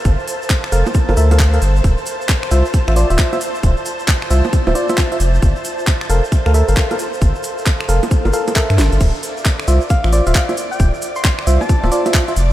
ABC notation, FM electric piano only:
X:1
M:4/4
L:1/16
Q:"Swing 16ths" 1/4=134
K:Dm
V:1 name="FM electric piano"
z6 [ABf] z2 [ABf] [ABe] [ABf]2 [ABf] z2 | z6 [Fce] z2 [Fce] [Fcd] [Fce]2 [Fce] z2 | z6 [Fce] z2 [Fce] [Fcd] [Fce]2 [Fce] z2 | z6 [ABf] z2 [ABf] [ABe] [ABf]2 [ABf] z2 |
z6 [ABf] z2 [ABf] [ABf]2 [ABe]4 | z6 [Fce] z2 [Fce] [Fcd] [Fce]2 [Fce] z2 | z6 [Fce] z2 [Fce] [Fcd] [Fce]2 [Fce] z2 |]